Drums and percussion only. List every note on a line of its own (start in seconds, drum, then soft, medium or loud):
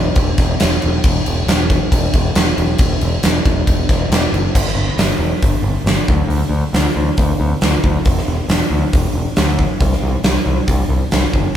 0.16 kick medium
0.16 crash medium
0.38 kick medium
0.38 snare soft
0.38 crash medium
0.60 snare loud
0.60 crash medium
0.82 crash medium
1.04 kick loud
1.04 crash medium
1.26 crash medium
1.48 snare loud
1.48 crash medium
1.70 kick medium
1.70 crash medium
1.92 kick medium
1.92 crash medium
2.13 kick medium
2.13 crash medium
2.35 snare loud
2.35 crash medium
2.58 crash medium
2.78 kick loud
2.78 crash medium
3.01 crash medium
3.23 snare loud
3.23 crash medium
3.46 kick medium
3.46 crash medium
3.67 kick medium
3.67 crash medium
3.89 kick medium
3.89 snare soft
3.89 crash medium
4.12 snare loud
4.12 crash medium
4.34 crash medium
4.55 kick loud
4.55 crash loud
4.67 snare soft
4.98 snare loud
4.98 open hi-hat medium
5.11 snare soft
5.42 kick loud
5.42 open hi-hat soft
5.86 snare loud
5.86 open hi-hat medium
6.08 kick loud
6.30 open hi-hat soft
6.74 snare loud
6.74 open hi-hat medium
6.86 snare soft
7.17 kick loud
7.17 open hi-hat medium
7.61 snare loud
7.61 open hi-hat medium
7.84 kick medium
8.05 kick loud
8.05 open hi-hat medium
8.18 snare soft
8.49 snare loud
8.49 open hi-hat medium
8.61 snare soft
8.93 kick loud
8.93 open hi-hat medium
9.36 snare loud
9.36 open hi-hat medium
9.59 kick medium
9.80 kick loud
9.80 open hi-hat medium
9.92 snare soft
10.24 snare loud
10.24 open hi-hat soft
10.35 snare soft
10.68 kick medium
10.68 open hi-hat soft
11.11 snare loud
11.11 open hi-hat medium
11.33 kick medium